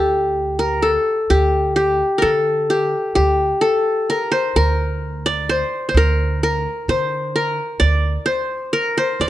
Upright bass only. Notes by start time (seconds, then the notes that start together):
Already playing: D2
1.30 D2
2.23 D3
3.16 D2
4.56 D2
5.94 D2
6.88 D3
7.81 D2
9.20 D2